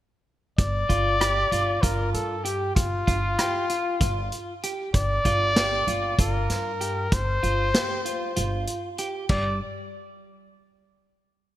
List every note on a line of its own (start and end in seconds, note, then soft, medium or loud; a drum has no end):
0.58 0.86 G1 medium
0.58 1.84 D5 loud
0.58 kick medium
0.58 closed hi-hat medium
0.89 1.44 G1 medium
0.89 1.15 F4 medium
0.89 kick medium
0.89 closed hi-hat soft
1.20 1.47 G4 medium
1.20 cross-stick medium
1.20 closed hi-hat medium
1.51 1.79 G1 medium
1.51 1.78 F4 medium
1.51 closed hi-hat soft
1.82 2.11 G1 medium
1.82 2.35 F4 medium
1.82 2.12 A#4 medium
1.82 kick medium
1.82 closed hi-hat medium
2.13 2.69 G2 medium
2.13 2.46 A4 medium
2.13 closed hi-hat soft
2.44 2.75 G4 medium
2.44 2.71 G4 medium
2.44 closed hi-hat medium
2.75 3.04 G1 medium
2.75 4.59 F4 medium
2.75 kick medium
2.75 closed hi-hat medium
3.07 3.35 G1 medium
3.07 3.33 F4 medium
3.07 kick medium
3.07 closed hi-hat soft
3.39 3.65 G4 medium
3.39 cross-stick medium
3.39 closed hi-hat medium
3.69 3.96 F4 medium
3.69 closed hi-hat medium
4.00 4.28 G1 medium
4.00 4.53 F4 medium
4.00 kick medium
4.00 closed hi-hat medium
4.32 closed hi-hat soft
4.63 4.89 G4 medium
4.63 closed hi-hat soft
4.94 5.21 G1 medium
4.94 6.15 D5 loud
4.94 kick loud
4.94 closed hi-hat medium
5.25 5.80 G1 medium
5.25 5.51 F4 medium
5.25 kick medium
5.25 closed hi-hat soft
5.56 5.83 G4 medium
5.56 snare loud
5.56 closed hi-hat medium
5.87 6.15 G1 medium
5.87 6.14 F4 medium
5.87 closed hi-hat soft
6.18 6.46 G1 medium
6.18 6.70 F4 medium
6.18 7.15 A#4 medium
6.18 kick medium
6.18 closed hi-hat medium
6.50 7.05 G2 medium
6.50 snare soft
6.50 closed hi-hat medium
6.81 7.07 G4 medium
6.81 closed hi-hat medium
7.12 7.39 G1 medium
7.12 8.69 C5 medium
7.12 kick medium
7.12 closed hi-hat medium
7.43 7.71 G1 medium
7.43 7.69 F4 medium
7.43 closed hi-hat soft
7.74 8.00 G4 medium
7.74 snare loud
7.74 closed hi-hat medium
8.05 8.31 F4 medium
8.05 closed hi-hat soft
8.36 8.64 G1 medium
8.36 8.88 F4 medium
8.36 closed hi-hat medium
8.67 closed hi-hat medium
8.98 9.25 G4 medium
8.98 closed hi-hat medium
9.29 9.59 G1 medium
9.29 9.59 G3 medium
9.29 9.59 D5 medium
9.29 kick medium
9.29 crash medium